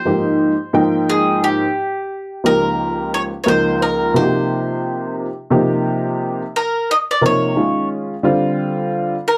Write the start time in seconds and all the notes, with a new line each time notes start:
Already playing: C5
0.05 G#2 F3 A#3 D#4 G4
0.73 G#2 F3 A#3 D#4 G5
1.10 G#4
1.44 G4
2.44 C#2 F3 A#3 D#4 G4 A#4
3.14 C#5
3.44 C#2 F3 A#3 D#4 A#4 C#5
3.48 C5
3.82 A#4
4.14 C3 F3 A#3 D#4 F#4 C5
4.22 G4
5.50 C3 F3 A#3 D#4 G4
6.56 A#4
6.91 D#5
7.11 D5
7.21 C3 F3 A#3 D#4 A#4
7.26 C#5
7.55 D#3 G#3 C#4 F4
8.23 D3 G3 C4 F4
9.28 A#4